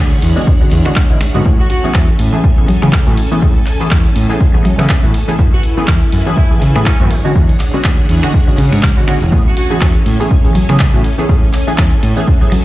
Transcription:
Already playing: string machine D4 G#4 C#5 F#5
0.12 shaker
0.22 fingered electric bass E2, open hi-hat
0.36 analog polysynth D3 G#3 B3 C#4 F#4, shaker
0.47 kick, shaker
0.61 analog polysynth D3 G#3 B3 C#4 F#4, muted fingered electric bass stroke, shaker
0.71 fingered electric bass E2, open hi-hat
0.85 analog polysynth D3 G#3 B3 C#4 F#4, finger snap, shaker
0.96 kick, clap, shaker
1.10 analog polysynth D3 G#3 B3 C#4 E4, shaker
1.21 finger snap, muted fingered electric bass stroke, open hi-hat
1.34 fingered electric bass G#2, analog polysynth D3 G#3 B3 C#4 F#4, shaker
1.45 fingered electric bass A2, analog polysynth A3 B3 C#4 G#4, string machine C#4 A4 G#5, kick, shaker
1.59 horn section F#4, shaker
1.70 horn section F#4, open hi-hat
1.84 analog polysynth E3 A3 B3 C#4 G#4, muted fingered electric bass stroke, shaker
1.94 fingered electric bass E2, kick, clap, shaker
2.09 shaker
2.19 fingered electric bass A2, open hi-hat
2.33 analog polysynth E3 A3 B3 C#4 G#4, shaker
2.44 kick, shaker
2.57 analog polysynth E3 A3 B3 C#4 G#4, shaker
2.68 fingered electric bass F#3, open hi-hat
2.82 fingered electric bass C#3, analog polysynth E3 A3 B3 C#4 G#4, finger snap, shaker
2.93 kick, clap, shaker
3.07 fingered electric bass A2, analog polysynth E3 A3 B3 C#4 F#4, shaker
3.17 open hi-hat
3.31 analog polysynth E3 A3 B3 C#4 G#4, shaker
3.42 fingered electric bass A2, analog polysynth E3 A3 B3 C#4 G#4, kick, shaker
3.56 shaker
3.66 clap, open hi-hat
3.80 analog polysynth E3 A3 B3 C#4 G#4, muted fingered electric bass stroke, shaker
3.91 fingered electric bass E2, kick, clap, shaker
4.05 shaker
4.16 fingered electric bass A2, open hi-hat
4.29 analog polysynth E3 A3 B3 C#4 G#4, shaker
4.41 kick, shaker
4.54 analog polysynth E3 A3 B3 C#4 G#4, muted fingered electric bass stroke, shaker
4.65 fingered electric bass F#3, open hi-hat
4.78 fingered electric bass C#3, analog polysynth E3 A3 B3 C#4 G#4, finger snap, shaker
4.89 kick, clap, shaker
5.03 fingered electric bass A2, analog polysynth E3 A3 B3 C#4 F#4, shaker
5.14 open hi-hat
5.28 analog polysynth E3 A3 B3 C#4 G#4, shaker
5.38 fingered electric bass F#2, analog polysynth E3 A3 B3 C#4 G#4, string machine E4 B4 G#5, kick, shaker
5.53 horn section F#4, shaker
5.63 open hi-hat
5.77 analog polysynth E3 A3 B3 C#4 G#4, muted fingered electric bass stroke, shaker
5.88 fingered electric bass E2, kick, clap, shaker
6.02 shaker
6.12 fingered electric bass F#2, open hi-hat
6.26 analog polysynth E3 A3 B3 C#4 G#4, shaker
6.37 horn section E4, kick, shaker
6.51 analog polysynth E3 A3 B3 C#4 G#4, shaker
6.62 fingered electric bass C#3, open hi-hat
6.75 fingered electric bass A2, analog polysynth E3 A3 B3 C#4 G#4, finger snap, shaker
6.86 horn section C#4, kick, clap, shaker
7.00 fingered electric bass F#2, analog polysynth E3 A3 B3 C#4 F#4, shaker
7.11 string machine D4 G#4 C#5 F#5, open hi-hat
7.24 analog polysynth D3 G#3 B3 C#4 F#4, shaker
7.35 fingered electric bass E2, analog polysynth D3 C#4, kick, shaker
7.49 open hi-hat, shaker
7.60 clap, open hi-hat
7.73 analog polysynth D3 G#3 B3 C#4 F#4, muted fingered electric bass stroke, shaker
7.84 fingered electric bass D2, kick, clap, shaker
7.99 shaker
8.09 fingered electric bass E2, open hi-hat
8.23 analog polysynth D3 G#3 B3 C#4 F#4, finger snap, shaker
8.34 kick, shaker
8.47 analog polysynth D3 G#3 B3 C#4 F#4, muted fingered electric bass stroke, shaker
8.58 fingered electric bass C#3, open hi-hat
8.72 fingered electric bass G#2, finger snap, shaker
8.83 kick, clap, shaker
8.97 analog polysynth D3 G#3 B3 C#4 F#4, shaker
9.07 analog polysynth D3 G#3 B3 C#4 F#4, finger snap, muted fingered electric bass stroke, open hi-hat
9.22 fingered electric bass E1, shaker
9.32 fingered electric bass A2, analog polysynth E3 A3 B3 C#4 G#4, string machine C#4 A4 G#5, kick, shaker
9.46 horn section F#4, shaker
9.57 horn section F#4, open hi-hat, shaker
9.70 analog polysynth E3 A3 B3 C#4 G#4, muted fingered electric bass stroke, shaker
9.81 fingered electric bass E2, kick, clap, shaker
9.96 shaker
10.06 fingered electric bass A2, open hi-hat, shaker
10.19 analog polysynth E3 A3 B3 C#4 G#4, shaker
10.31 kick, shaker
10.44 analog polysynth E3 A3 B3 C#4 G#4, shaker
10.55 fingered electric bass F#3, open hi-hat, shaker
10.69 fingered electric bass C#3, analog polysynth E3 A3 B3 C#4 G#4, finger snap, shaker
10.80 kick, clap, shaker
10.93 fingered electric bass A2, analog polysynth E3 A3 B3 C#4 F#4, shaker
11.04 open hi-hat, shaker
11.18 analog polysynth E3 A3 B3 C#4 G#4, shaker
11.29 fingered electric bass A2, analog polysynth E3 A3 B3 C#4 G#4, kick, shaker
11.43 shaker
11.53 clap, open hi-hat, shaker
11.67 analog polysynth E3 A3 B3 C#4 G#4, muted fingered electric bass stroke, shaker
11.78 fingered electric bass E2, kick, clap, shaker
11.93 shaker
12.03 fingered electric bass A2, open hi-hat, shaker
12.16 analog polysynth E3 A3 B3 C#4 G#4, shaker
12.26 kick, shaker
12.41 analog polysynth E3 A3 B3 C#4 G#4, muted fingered electric bass stroke, shaker
12.52 fingered electric bass F#3, open hi-hat, shaker

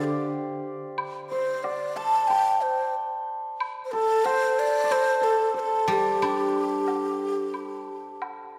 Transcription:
Already playing: guzheng D3, hammered dulcimer G4 C5 D5 F5 G5
0.00 xiao G4 A4
0.98 high woodblock
1.30 xiao C5, hammered dulcimer C5
1.63 xiao D5, hammered dulcimer D5, low woodblock
1.96 hammered dulcimer A5, xiao A5
2.27 xiao G5, hammered dulcimer G5, high woodblock
2.61 xiao C5
3.60 high woodblock
3.85 xiao C5
3.92 xiao A4, hammered dulcimer A4
4.25 xiao C5, hammered dulcimer C5, low woodblock
4.59 xiao D5
4.84 hammered dulcimer D5
4.91 hammered dulcimer C5, xiao C5, high woodblock
5.21 hammered dulcimer A4, xiao A4
5.54 hammered dulcimer A4, xiao C5
5.59 xiao A4
5.88 guzheng G3, hammered dulcimer G4, xiao A4
5.92 xiao G4
6.22 guzheng D4, high woodblock
6.88 low woodblock
7.54 high woodblock
8.22 high woodblock, low woodblock

